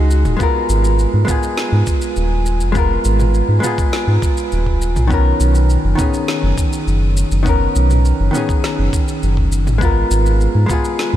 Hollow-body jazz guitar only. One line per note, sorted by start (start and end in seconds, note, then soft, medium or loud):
0.00 0.35 G#3 medium
0.00 0.36 D#4 medium
0.00 0.37 F#4 medium
0.00 0.38 G#4 medium
0.37 1.23 G#3 medium
0.37 1.24 B3 medium
0.41 1.25 F4 medium
0.41 1.26 A#4 medium
1.25 2.70 G#3 medium
1.25 2.71 B3 medium
1.29 2.72 F4 medium
1.29 2.73 G#4 medium
2.72 3.59 G#3 medium
2.72 3.60 B3 medium
2.72 3.61 F4 medium
2.78 3.62 A#4 medium
3.60 5.05 G#3 medium
3.60 5.06 B3 medium
3.64 5.08 F4 medium
3.64 5.09 G#4 medium
5.07 5.94 D#3 medium
5.07 5.95 B3 medium
5.12 5.96 C#4 medium
5.12 5.97 A#4 medium
5.95 7.41 D#3 medium
5.95 7.42 B3 medium
5.99 7.43 C#4 medium
5.99 7.44 G#4 medium
7.43 8.29 D#3 medium
7.43 8.30 B3 medium
7.43 8.31 C#4 medium
7.49 8.32 A#4 medium
8.31 9.76 D#3 medium
8.31 9.77 B3 medium
8.35 9.78 C#4 medium
8.35 9.79 G#4 medium
9.78 10.65 G#3 medium
9.78 10.66 B3 medium
9.83 10.67 F4 medium
9.83 10.68 A#4 medium
10.66 11.16 G#3 medium
10.66 11.16 B3 medium
10.71 11.16 F4 medium
10.71 11.16 G#4 medium